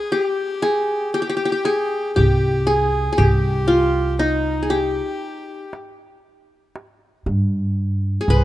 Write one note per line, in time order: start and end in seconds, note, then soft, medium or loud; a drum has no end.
0.00 0.15 G#4 medium
0.00 0.18 G#4 medium
0.12 0.68 G4 medium
0.12 1.14 G4 medium
0.62 1.20 G#4 medium
0.62 darbuka tek medium
1.14 1.21 G4 medium
1.14 2.13 G4 medium
1.22 1.29 G4 medium
1.29 1.36 G4 medium
1.37 1.45 G4 medium
1.45 1.52 G4 medium
1.52 1.71 G4 medium
1.65 2.22 G#4 medium
1.65 darbuka tek medium
2.16 3.07 C2 medium
2.16 2.73 G4 medium
2.16 2.69 G4 medium
2.16 darbuka dum medium
2.67 3.12 G#4 medium
2.67 3.18 G#4 medium
3.12 3.24 G#4 medium
3.18 4.98 C2 medium
3.18 4.43 G4 medium
3.18 4.17 G4 medium
3.18 darbuka dum medium
3.68 5.02 F4 medium
4.19 5.64 D#4 medium
4.19 4.73 D#4 medium
4.19 darbuka tek medium
4.63 4.76 G#4 medium
4.70 5.96 G4 medium
4.70 5.73 G4 medium
5.73 darbuka tek medium
6.76 darbuka tek medium
7.26 8.16 G2 medium
7.26 darbuka dum medium
8.21 8.44 G#4 medium
8.28 8.44 C2 medium
8.28 8.38 B4 medium
8.28 8.44 B4 medium
8.28 darbuka dum medium
8.36 8.44 C5 medium